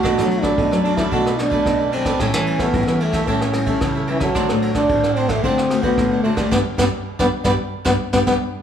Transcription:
<<
  \new Staff \with { instrumentName = "Cavaquinho" } { \time 4/4 \key g \major \tempo 4 = 111 <d' a' b' d''>16 <a' b' d''>16 r16 <a' b' d''>8 <a' b' d''>16 <d' a' b' d''>16 <a' b' d''>16 <d' a' b' d''>16 <a' b' d''>16 r16 <a' b' d''>8 <a' b' d''>16 <d' a' b' d''>16 <a' b' d''>16 | <g' a' cis'' e''>16 <a' cis'' e''>16 r16 <a' cis'' e''>8 <a' cis'' e''>16 <g' a' cis'' e''>16 <a' cis'' e''>16 <g' a' cis'' e''>16 <a' cis'' e''>16 r16 <a' cis'' e''>8 <a' cis'' e''>16 <g' a' cis'' e''>16 <a' cis'' e''>16 | <d' c'' d'' fis''>16 <c'' d'' fis''>16 r16 <c'' d'' fis''>8 <c'' d'' fis''>16 <d' c'' d'' fis''>16 <c'' d'' fis''>16 <d' c'' d'' fis''>16 <c'' d'' fis''>16 r16 <c'' d'' fis''>8 <c'' d'' fis''>16 <d' c'' d'' fis''>16 <c'' d'' fis''>16 | <g' b' d''>16 r16 <g' b' d''>16 r8 <g' b' d''>16 r16 <g' b' d''>16 r8 <g' b' d''>16 r16 <g' b' d''>16 <g' b' d''>16 r8 | }
  \new Staff \with { instrumentName = "Nylon-string guitar" } { \time 4/4 \key g \major << { <fis a d'>16 <fis a d'>8. <fis a d'>4 <fis a d'>16 r16 <fis a d'>16 <fis a d'>8. <fis a d'>16 r16 | <g cis' e'>16 <g cis' e'>8. <g cis' e'>8. r16 <g cis' e'>16 r16 <g cis' e'>16 <g cis' e'>8. <g cis' e'>16 r16 | <a c' fis'>16 <a c' fis'>8. <a c' fis'>8. r16 <a c' fis'>8 <a c' fis'>16 <a fis'>8. <a c' fis'>16 r16 | <g b d'>16 r16 <g b d'>16 r8 <g b d'>16 r16 <g b d'>16 r8 <g b d'>16 r16 <g b d'>16 <g b d'>16 r8 | } \\ { b,4 fis,4 b,4 fis,4 | a,4 e4 a,4 e4 | d4 a,4 d4 a,4 | r1 | } >> }
  \new Staff \with { instrumentName = "Trombone" } { \time 4/4 \key g \major fis'8. d'8. d'16 e'16 fis'8 d'4 c'8 | cis'8. b8. a8 cis'4 r8 e16 fis16~ | fis8. d'8. c'16 a16 c'8. b8. a16 g16 | b16 r16 b16 r8 b16 r16 b16 r8 b16 r16 b16 b16 r8 | }
  \new Staff \with { instrumentName = "Nylon-string guitar" } { \clef bass \time 4/4 \key g \major b,16 fis8. b,16 fis8. b,4 b,4 | a,16 e8. a,16 e8. a,4 cis4 | d16 a,8. d16 a,8. d4 d4 | g,16 r16 g,16 r8 g,16 r16 g,16 r8 g,16 r16 g,16 g,16 r8 | }
  \new DrumStaff \with { instrumentName = "Drums" } \drummode { \time 4/4 <bd cymr ss>16 ss16 cymr16 <bd cymr ss>16 <bd cymr>16 ss16 cymr16 <bd cymr ss>16 <bd cymr>16 ss16 <cymr ss>16 <bd cymr>16 <bd cymr ss>8 cymr16 <bd cymr ss>16 | <bd cymr ss>16 ss16 cymr16 <bd cymr ss>16 <bd cymr>16 ss16 cymr16 <bd cymr ss>16 <bd cymr>16 ss16 <cymr ss>16 <bd cymr>16 <bd cymr ss>8 cymr16 <bd cymr ss>16 | <bd cymr ss>16 ss16 cymr16 <bd cymr ss>16 <bd cymr>16 ss16 cymr16 <bd cymr ss>16 <bd cymr>16 ss16 <cymr ss>16 <bd cymr>16 <bd cymr ss>8 cymr16 <bd cymr ss>16 | <bd sn>8 <bd sn>8 r16 <bd sn>8 <bd sn>16 r8 <bd sn>8 <bd sn>16 <bd sn>8. | }
>>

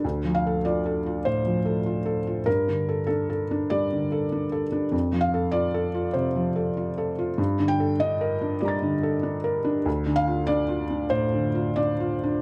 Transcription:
\new Staff \with { instrumentName = "Felt piano" } { \time 4/4 \key g \minor \tempo 4 = 97 << { r8 f''8 d''4 c''2 | bes'4 a'4 d''4. r8 | r8 f''8 d''4 c''2 | r8 g''8 ees''4 <d'' bes'' a'''>2 |
r8 f''8 d''4 c''4 d''4 | } \\ { \tuplet 3/2 { d,8 f8 a'8 f'8 a'8 f'8 a,8 f8 a'8 f'8 a'8 f'8 } | \tuplet 3/2 { g,8 d8 a'8 d'8 a'8 d'8 g8 d8 a'8 d'8 a'8 d'8 } | \tuplet 3/2 { f,8 f8 a'8 f'8 a'8 f'8 c8 f8 a'8 f'8 a'8 f'8 } | \tuplet 3/2 { g,8 d8 a'8 d'8 bes'8 d'8 g8 d8 a'8 d'8 bes'8 d'8 } |
\tuplet 3/2 { d,8 d8 f'8 d'8 f'8 d'8 a,8 d8 f'8 d'8 f'8 d'8 } | } >> }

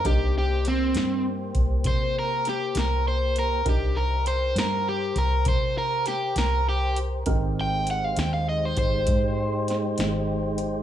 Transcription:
<<
  \new Staff \with { instrumentName = "Overdriven electric guitar" } { \time 12/8 \key c \minor \tempo 4. = 66 g'8 g'8 c'4 r4 c''8 bes'8 g'8 bes'8 c''8 bes'8 | g'8 bes'8 c''8 bes'8 g'8 bes'8 c''8 bes'8 g'8 bes'8 g'8 r8 | r8 g''8 fis''16 f''16 g''16 f''16 ees''16 c''16 c''2 r4. | }
  \new Staff \with { instrumentName = "Tonewheel organ" } { \time 12/8 \key c \minor <bes g' c''>1. | <g' bes' c''>1. | <aes ees' g' c''>1. | }
  \new Staff \with { instrumentName = "Upright piano" } { \time 12/8 \key c \minor <d' ees' g' bes'>1. | <d' ees' g' bes'>1. | <c' ees' g' bes'>1. | }
  \new Staff \with { instrumentName = "Fingered electric bass" } { \clef bass \time 12/8 \key c \minor c,4. g,4 c,8 c4. c,4. | c,4. g,4 c,8 c4. c,4. | aes,,4. ees,4 aes,,8 aes,4. aes,,4. | }
  \new DrumStaff \with { instrumentName = "Drums" } \drummode { \time 12/8 <hh bd>4 hh8 <hh sn>4 <hh bd>8 <hh bd>4 <hh sn>8 <hh sn>4 hh8 | <hh bd>4 hh8 <hh sn>4 hh8 <hh bd>4 <hh sn>8 <hh sn>4 hh8 | <hh bd>4 hh8 <hh sn>4 <hh bd>8 <hh bd>4 <hh sn>8 <hh sn>4 hh8 | }
>>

